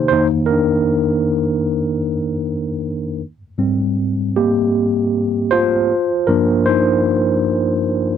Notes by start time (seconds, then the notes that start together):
Already playing: C3 D#3 A#3 D#4 G4 C5
0.08 F2 D#3 C5
0.12 A#3 D#4
0.46 A#4
0.51 D4
3.58 G#2 G3 C4
4.36 A#3 G4
5.51 F4 C5
6.27 G2 F3 A#3 D4 A#4
6.66 D#4 C5